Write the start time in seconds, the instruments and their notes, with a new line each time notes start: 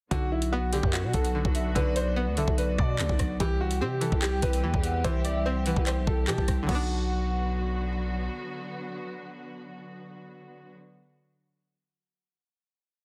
0.11 808-style bass B1, synth pluck D3, string section D3 F#3 B3 F#4, grand piano F#4, kick, closed hi-hat
0.32 grand piano E4
0.42 closed hi-hat
0.52 synth pluck B3, grand piano F#4
0.73 synth pluck D3, grand piano G4, closed hi-hat
0.83 808-style bass F#2, kick
0.93 grand piano F#4, soft synth lead F#5, clap, closed hi-hat
1.04 808-style bass B2
1.14 808-style bass B1, grand piano A4, kick, closed hi-hat
1.25 closed hi-hat
1.35 synth pluck D3
1.45 808-style bass B1, kick
1.55 soft synth lead E5, closed hi-hat
1.75 808-style bass B1, synth pluck D3, grand piano B4, soft synth lead D5, kick, closed hi-hat
1.96 grand piano C5, closed hi-hat
2.16 synth pluck B3, grand piano B4
2.27 808-style bass D2
2.37 808-style bass B1, synth pluck D3, grand piano A4, soft synth lead E5, closed hi-hat
2.48 808-style bass B1, kick
2.58 grand piano B4, soft synth lead D5, closed hi-hat
2.78 808-style bass B2, grand piano D5, kick
2.99 808-style bass D2, synth pluck D3, clap, closed hi-hat
3.09 808-style bass B1, kick
3.19 kick, cross-stick, closed hi-hat
3.40 808-style bass C2, string section E3 G3 C4 G4, synth pluck E3, grand piano G4, kick, closed hi-hat
3.61 grand piano F#4
3.71 closed hi-hat
3.81 808-style bass C3, synth pluck C4, grand piano G4
4.01 synth pluck E3, grand piano A4, closed hi-hat
4.12 808-style bass C2, kick
4.22 grand piano G4, soft synth lead G5, clap, closed hi-hat
4.42 808-style bass C2, grand piano B4, kick, closed hi-hat
4.53 closed hi-hat
4.63 808-style bass E2, synth pluck E3
4.74 808-style bass E2, kick
4.84 soft synth lead F#5, closed hi-hat
5.04 808-style bass C2, synth pluck E3, grand piano C5, soft synth lead E5, kick, closed hi-hat
5.25 grand piano D5, closed hi-hat
5.46 synth pluck C4, grand piano C5
5.66 synth pluck E3, grand piano B4, soft synth lead F#5, closed hi-hat
5.76 808-style bass C2, kick
5.86 grand piano C5, soft synth lead G5, clap, closed hi-hat
5.97 808-style bass B1
6.07 808-style bass C2, grand piano A4, kick
6.28 808-style bass C3, synth pluck E3, grand piano G4, soft synth lead A5, clap, closed hi-hat
6.38 808-style bass C2, kick
6.48 soft synth lead G5, kick, cross-stick, closed hi-hat
6.63 synth pluck D3
6.67 808-style bass B1, string section D3 F#3 B3 F#4, synth pluck F#3 B3, grand piano F#4, soft synth lead F#5, kick, crash
6.75 synth pluck D4